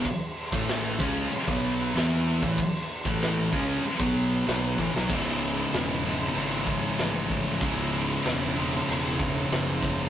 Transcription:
<<
  \new Staff \with { instrumentName = "Distorted electric guitar" } { \clef bass \time 4/4 \key cis \minor \tempo 4 = 95 r8. <a, e a>8. <cis gis cis'>8 r16 <b, fis b>8. <e b e'>8. <a, e>16 | r8. <a, e a>8. <cis gis cis'>8 r16 <b, fis b>8. <b, fis b>8 <a, e>16 <b, fis>16 | <cis, gis, cis>1 | <cis, gis, cis>1 | }
  \new Staff \with { instrumentName = "Distorted electric guitar" } { \clef bass \time 4/4 \key cis \minor r8. <a, e a>8. <cis gis cis'>8 r16 <b, fis b>8. <e b e'>8. <a, e>16 | r8. <a, e a>8. <cis gis cis'>8 r16 <b, fis b>8. <b, fis b>8 <a, e>16 <b, fis>16 | <cis, gis, cis gis e'>4. <cis, gis, cis gis e'>2~ <cis, gis, cis gis e'>8 | <cis, gis, cis gis e'>4. <cis, gis, cis gis e'>2~ <cis, gis, cis gis e'>8 | }
  \new Staff \with { instrumentName = "Distorted electric guitar" } { \clef bass \time 4/4 \key cis \minor r8. <a, e a>8. <cis gis cis'>8 r16 <b, fis b>8. <e b e'>8. <a, e>16 | r8. <a, e a>8. <cis gis cis'>8 r16 <b, fis b>8. <b, fis b>8 <a, e>16 <b, fis>16 | <cis, gis, cis>4. <cis, gis, cis>2~ <cis, gis, cis>8 | <cis, gis, cis>4. <cis, gis, cis>2~ <cis, gis, cis>8 | }
  \new Staff \with { instrumentName = "Fingered electric bass" } { \clef bass \time 4/4 \key cis \minor r8. a,,8. cis,8 r16 b,,8. e,8. a,,16 | r8. a,,8. cis,8 r16 b,,8. b,,8 a,,16 b,,16 | cis,,4 e,,4 gis,,4 a,,4 | cis,,4 e,,4 e,,4 fis,,4 | }
  \new DrumStaff \with { instrumentName = "Drums" } \drummode { \time 4/4 <cymc bd>8 cymc16 bd16 <cymc sn>8 <cymc bd>8 cymc16 bd16 cymc8 <cymc sn>8 cymc16 bd16 | <cymc bd>16 sn16 cymc16 bd16 <cymc sn>8 <cymc bd>8 cymc16 bd16 cymc8 <cymc sn>8 bd16 sn16 | <cymc bd>8 cymc8 <cymc sn>8 cymc8 cymc16 sn16 <cymc bd>8 <cymc sn>8 <cymc bd>16 sn16 | <cymc bd>8 cymc8 <cymc sn>8 cymc8 cymc8 <cymc bd>8 <cymc sn>8 <cymc bd>8 | }
>>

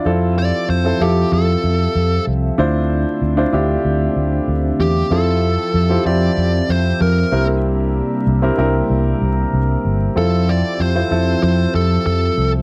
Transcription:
<<
  \new Staff \with { instrumentName = "Lead electric guitar" } { \time 4/4 \key f \major \tempo 4 = 95 r8 d''8 c''8 g'8 a'4. r8 | r2. r8 g'8 | a'4. d''4 c''8 bes'8. r16 | r1 |
a'8 d''8 c''4 c''8 a'8 a'8. r16 | }
  \new Staff \with { instrumentName = "Grand piano" } { \time 4/4 \key f \major <c' e' f' a'>4 r16 <c' e' f' a'>16 <c' e' f' a'>4. r4 | <d' e' f' c''>4 r16 <d' e' f' c''>16 <d' e' f' g'>4. r4 | <c' e' f' a'>4 r16 <c' e' f' g'>16 <c' e' f' g'>4. r8 <c' e' g' bes'>8~ | <c' e' g' bes'>4 r16 <c' e' g' bes'>16 <c' e' g' bes'>4. r4 |
<c' e' f' a'>4 r16 <c' e' f' c''>16 <c' e' f' a'>4. r4 | }
  \new Staff \with { instrumentName = "Analog synth pad" } { \time 4/4 \key f \major << { e''1~ | e''1 | e''2.~ e''8 bes8~ | bes1 |
r1 | } \\ { <f c' g' a'>1 | <d a d'>1 | <f g' a''>2.~ <f g' a''>8 <c g d'>8~ | <c g d'>1 |
<f c' g' a'>1 | } >> }
  \new Staff \with { instrumentName = "Fingered electric bass" } { \clef bass \time 4/4 \key f \major f,4 f,8 f,8 f,8 f,8 f,8 c,8 | d,4 d,8 d,8 d,8 d,8 d,8 e,8 | f,4 f,8 f,8 f,8 f,8 f,8 c,8~ | c,4 c,8 c,8 c,8 c,8 c,8 g,,8 |
f,4 f,8 f,8 f,8 f,8 f,8 c,8 | }
>>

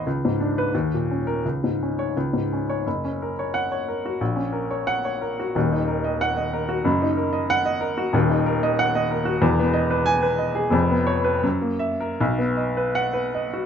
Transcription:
\new Staff \with { instrumentName = "Upright piano" } { \time 2/4 \key fis \major \tempo 4 = 89 << { r8. b'16 r8. ais'16 | r8. cis''16 r8. cis''16 | r4 fis''8 r8 | r4 fis''8 r8 |
r4 fis''8 r8 | r4 fis''8 r8 | \key b \major r4 fis''8 r8 | r4 gis''8 r8 |
r8 cis''8 r8 e''8 | r4 fis''8 r8 | } \\ { cis,16 gis,16 d'8 dis,16 ais,16 cis'8 | cis,16 gis,16 cis'8 cis,16 gis,16 cis'8 | fis,,16 cis'16 ais'16 cis''8 cis''16 ais'16 fis'16 | ais,,16 cis'16 ais'16 cis''8 cis''16 ais'16 fis'16 |
<dis,, dis,>16 dis'16 ais'16 dis''8 dis''16 ais'16 fis'16 | <fis,, fis,>16 dis'16 ais'16 dis''8 dis''16 ais'16 fis'16 | <dis,, dis,>16 dis'16 ais'16 dis''8 dis''16 ais'16 fis'16 | <e,, e,>16 b16 dis''16 b'8 b'16 dis''16 gis'16 |
<eis,, eis,>16 b8 b'16 fis,16 ais8 ais'16 | b,,16 b16 dis''16 b'8 b'16 dis''16 fis'16 | } >> }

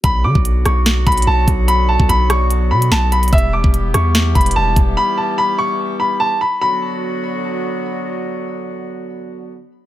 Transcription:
<<
  \new Staff \with { instrumentName = "Grand piano" } { \time 4/4 \key b \minor \tempo 4 = 146 b''8 d'''4 cis'''4 b''8 a''8 r8 | b''8 a''8 b''8 cis'''4 b''8 a''8 b''8 | e''8 d'''4 cis'''4 b''8 a''8 r8 | b''8 a''8 b''8 cis'''4 b''8 a''8 b''8 |
b''2. r4 | r1 | }
  \new Staff \with { instrumentName = "Woodwind section" } { \clef bass \time 4/4 \key b \minor << { <d fis fis'>1~ | <d fis fis'>1 | <e g g'>1~ | <e g g'>1 |
<d fis b fis'>1~ | <d fis b fis'>1 | } \\ { b1~ | b1~ | b1~ | b1 |
r1 | r1 | } >> }
  \new Staff \with { instrumentName = "808-style bass" } { \clef bass \time 4/4 \key b \minor b,,8 d16 b,,8. b,,4 b,,8 b,,8 b,,8~ | b,,8. b,,16 b,,4. b,8 b,,4 | e,,8. e,,8. e,4 e,,8 e,,8 e,,8 | r1 |
r1 | r1 | }
  \new DrumStaff \with { instrumentName = "Drums" } \drummode { \time 4/4 <hh bd>8. bd16 hh8 <hh ss>8 <hh sn>8 <hh bd>32 hh32 hh32 hh32 r8 <hh bd>8 | hh8. bd16 hh8 <hh ss>8 hh8. hh16 sn8 hh16 hh32 hh32 | <hh bd>32 hh8 r32 bd16 hh8 <hh ss>8 <hh sn>8 <hh bd>32 hh32 hh32 hh32 r8 <hh bd>8 | r4 r4 r4 r4 |
r4 r4 r4 r4 | r4 r4 r4 r4 | }
>>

